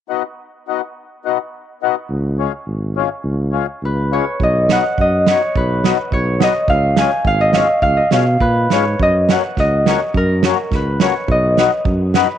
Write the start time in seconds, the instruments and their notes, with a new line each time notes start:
0.10 accordion B3 D#4 F#4
0.68 accordion B3 D#4 F#4
1.25 accordion B3 D#4 F#4
1.83 accordion B3 D#4 F#4
2.09 tuba C#2
2.39 accordion G#3 C#4 F4
2.66 tuba G#1
2.96 accordion G#3 C#4 F4
3.24 tuba C#2
3.52 accordion G#3 C#4 F4
3.82 tuba C#2, harp B4
4.12 accordion G#3 C#4 F4, harp C#5
4.40 tuba B1, harp D#5, kick
4.69 accordion B3 D#4 F#4, harp F#5, snare
4.98 tuba F#2, harp D#5, kick
5.27 accordion B3 D#4 F#4, snare
5.31 harp C#5
5.56 tuba B1, harp B4, kick
5.84 accordion B3 D#4 F#4, snare
6.12 tuba B1, harp C#5, kick
6.40 accordion B3 D#4 F#4, harp D#5, snare
6.68 tuba C#2, harp F5, kick
6.96 accordion G#3 C#4 F4, harp G#5, snare
7.24 tuba G#1, harp F5, kick
7.41 harp D#5
7.53 accordion G#3 C#4 F4, harp F5, snare
7.82 tuba C#2, harp F5, kick
7.97 harp D#5
8.11 tuba B2, accordion G#3 C#4 F4, harp F5, snare
8.40 tuba A#2, harp B4, kick
8.70 tuba G#2, accordion G#3 C#4 F4, harp C#5, snare
8.99 tuba F#2, harp D#5, kick
9.29 accordion A#3 C#4 F#4, harp F#5, snare
9.57 tuba C#2, harp D#5, kick, snare
9.86 accordion A#3 C#4 F#4, snare
9.90 harp C#5
10.14 tuba F#2, harp A#4, kick
10.43 accordion A#3 C#4 F#4, snare
10.71 tuba C#2, kick, snare
10.75 harp B4
11.00 accordion A#3 C#4 F#4, harp C#5, snare
11.28 tuba B1, harp D#5, kick
11.57 accordion B3 D#4 F#4, snare
11.85 tuba F#2, kick
12.14 accordion B3 D#4 F#4, harp B4, snare